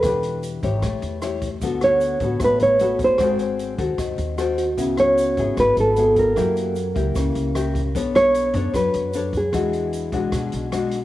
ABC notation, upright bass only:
X:1
M:4/4
L:1/8
Q:1/4=152
K:Emix
V:1 name="Upright bass" clef=bass
E,,,3 G,,, A,,, E,,3 | D,,3 A,,, A,,, A,,,3 | G,,,3 ^D,, D,, D,,3 | C,,3 G,,, G,,, G,,,3 |
F,,3 C,, C,, C,,3 | B,,,3 F,, F,, F,,3 | E,,3 B,,, B,,, B,,,3 |]